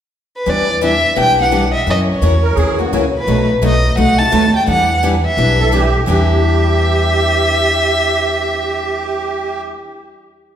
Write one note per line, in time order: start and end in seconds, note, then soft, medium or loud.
0.36 0.51 B4 medium
0.46 1.02 E2 medium
0.46 0.67 E3 medium
0.46 0.68 G3 medium
0.46 0.68 B3 medium
0.46 0.68 D4 medium
0.46 0.68 E4 medium
0.46 0.68 G4 medium
0.46 0.68 B4 medium
0.46 0.83 D5 medium
0.81 0.93 E3 medium
0.81 0.93 G3 medium
0.81 0.93 B3 medium
0.81 0.93 D4 medium
0.81 0.93 E4 medium
0.81 0.93 G4 medium
0.81 0.93 B4 medium
0.81 1.16 E5 medium
1.16 1.73 B1 medium
1.16 1.37 E3 medium
1.16 1.38 E3 medium
1.16 1.38 G3 medium
1.16 1.37 B3 medium
1.16 1.37 D4 medium
1.16 1.38 D4 medium
1.16 1.38 E4 medium
1.16 1.36 G4 medium
1.16 1.38 B4 medium
1.16 1.38 G5 loud
1.37 1.50 B3 soft
1.37 1.51 D4 soft
1.37 1.51 G4 medium
1.42 1.68 F#5 medium
1.51 1.63 E3 medium
1.51 1.63 G3 medium
1.51 1.63 B3 medium
1.51 1.63 D4 medium
1.51 1.63 E4 medium
1.51 1.63 G4 medium
1.51 1.64 B4 medium
1.72 1.76 D#5 medium
1.72 1.87 E5 medium
1.86 2.15 F#2 medium
1.86 2.08 C#3 medium
1.86 2.08 E3 medium
1.86 2.08 F#3 medium
1.86 2.08 A#3 medium
1.86 2.08 C#4 medium
1.86 2.09 C#4 medium
1.86 2.09 E4 medium
1.86 2.08 F#4 medium
1.86 2.09 A#4 medium
1.90 1.99 D#5 medium
2.12 2.76 C#5 medium
2.21 2.51 E2 medium
2.21 2.33 C#3 medium
2.21 2.33 E3 medium
2.21 2.33 F#3 medium
2.21 2.33 A#3 medium
2.21 2.33 C#4 medium
2.21 2.34 C#4 medium
2.21 2.34 E4 medium
2.21 2.34 F#4 medium
2.21 2.34 A#4 medium
2.43 2.57 A#4 medium
2.55 2.86 D#2 medium
2.55 2.78 C#3 medium
2.55 2.78 E3 medium
2.55 2.79 F#3 medium
2.55 2.78 A#3 medium
2.55 2.78 C#4 medium
2.55 2.79 C#4 medium
2.55 2.79 E4 medium
2.55 2.77 F#4 medium
2.55 2.78 G#4 medium
2.59 2.79 A#4 medium
2.78 2.92 A#3 soft
2.78 2.92 C#4 soft
2.78 3.01 F#4 medium
2.78 2.91 F#4 medium
2.92 3.22 C#2 medium
2.92 3.04 C#3 medium
2.92 3.04 E3 medium
2.92 3.04 F#3 medium
2.92 3.04 A#3 medium
2.92 3.04 C#4 medium
2.92 3.04 E4 medium
2.92 3.04 F#4 medium
2.92 3.04 A#4 medium
3.19 3.49 B4 medium
3.27 3.55 B1 medium
3.27 3.48 B2 medium
3.27 3.49 B2 medium
3.27 3.49 F#3 medium
3.27 3.49 A3 medium
3.27 3.49 D#4 medium
3.27 3.49 F#4 medium
3.27 3.49 B4 medium
3.62 3.92 B1 medium
3.62 3.73 B2 medium
3.62 3.74 F#3 medium
3.62 3.74 A3 medium
3.62 3.74 D#4 medium
3.62 3.74 F#4 medium
3.62 3.74 B4 medium
3.66 3.97 D#5 medium
3.97 4.27 C2 medium
3.97 4.18 B2 medium
3.97 4.19 B2 medium
3.97 4.18 F#3 medium
3.97 4.19 F#3 medium
3.97 4.18 A3 medium
3.97 4.19 A3 medium
3.97 4.18 D#4 medium
3.97 4.19 D#4 medium
3.97 4.18 F#4 medium
3.97 4.19 F#4 medium
3.97 4.19 B4 medium
3.97 4.20 F#5 medium
4.19 4.31 A3 soft
4.19 4.31 D#4 soft
4.19 4.31 F#4 medium
4.19 4.54 A5 medium
4.31 4.62 D#2 medium
4.31 4.43 B2 medium
4.31 4.44 B2 medium
4.31 4.44 F#3 medium
4.31 4.44 A3 medium
4.31 4.44 D#4 medium
4.31 4.44 F#4 medium
4.31 4.44 B4 medium
4.56 4.68 G5 medium
4.67 5.23 E2 medium
4.67 4.88 E3 medium
4.67 4.89 E3 medium
4.67 4.89 G3 medium
4.67 4.89 B3 medium
4.67 4.89 D4 medium
4.67 4.89 E4 medium
4.67 4.89 G4 medium
4.67 4.90 B4 medium
4.67 5.01 F#5 loud
5.03 5.14 E3 medium
5.03 5.14 G3 medium
5.03 5.14 B3 medium
5.03 5.14 D4 medium
5.03 5.15 E4 medium
5.03 5.14 G4 loud
5.03 5.15 B4 medium
5.26 5.91 E5 medium
5.37 5.93 B1 medium
5.37 5.58 E3 medium
5.37 5.59 E3 medium
5.37 5.59 G3 medium
5.37 5.59 B3 medium
5.37 5.59 D4 medium
5.37 5.59 E4 medium
5.37 5.58 G4 medium
5.37 5.59 B4 medium
5.59 5.72 B3 soft
5.59 5.72 D4 soft
5.59 5.72 G4 soft
5.59 5.73 A4 medium
5.72 5.83 E3 medium
5.72 5.84 E3 medium
5.72 5.84 G3 medium
5.72 5.84 B3 medium
5.72 5.84 D4 medium
5.72 5.84 E4 medium
5.72 6.05 G4 medium
5.72 5.84 G4 medium
5.72 5.84 B4 medium
6.06 9.71 E2 medium
6.06 9.74 E3 medium
6.06 9.76 E3 medium
6.06 9.76 G3 medium
6.06 9.77 B3 medium
6.06 9.76 D4 medium
6.06 9.78 D4 medium
6.06 9.77 E4 medium
6.06 9.61 G4 medium
6.06 9.78 G4 medium
6.06 9.78 B4 medium
6.06 9.62 E5 medium